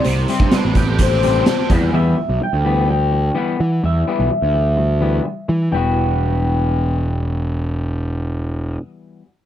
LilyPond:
<<
  \new Staff \with { instrumentName = "Clean electric guitar" } { \time 4/4 \key e \minor \tempo 4 = 127 c''4 b'4 c''4. r8 | e''4 g''4 g''4 fis''4 | e''2.~ e''8 r8 | g''1~ |
g''1 | }
  \new Staff \with { instrumentName = "Overdriven electric guitar" } { \time 4/4 \key e \minor c8 c'8 d'8 g'8 c'8 d'8 g'8 e,8 | r1 | r1 | r1 |
r1 | }
  \new Staff \with { instrumentName = "Clean electric guitar" } { \clef bass \time 4/4 \key e \minor <c g>8 <c g c'>8 <c g>8 <c g>8 <c g>8 <c g c'>8 <c g>8 <e g b>8 | <e g b>8 g8 <e g>8 <e g b>8 <e g>8 <e g>8 <e g b>8 <e g>8 | <e g>8 <e g b>8 <e g>8 <e g>8 <e g>8 <e g b>8 <e g>8 <e g>8 | <e g b fis'>1~ |
<e g b fis'>1 | }
  \new Staff \with { instrumentName = "Picked electric bass" } { \clef bass \time 4/4 \key e \minor c,8 r16 g,16 r16 a,,2 r16 e,8 | e,8 r16 b,,16 r16 d,2 r16 e8 | e,8 r16 b,,16 r16 d,2 r16 e8 | e,,1~ |
e,,1 | }
  \new DrumStaff \with { instrumentName = "Drums" } \drummode { \time 4/4 hh8 hh16 bd16 <hh sn>8 <hh bd>8 <hh bd>16 sn16 hh8 <hh sn>8 <hh bd>8 | r4 r4 r4 r4 | r4 r4 r4 r4 | r4 r4 r4 r4 |
r4 r4 r4 r4 | }
>>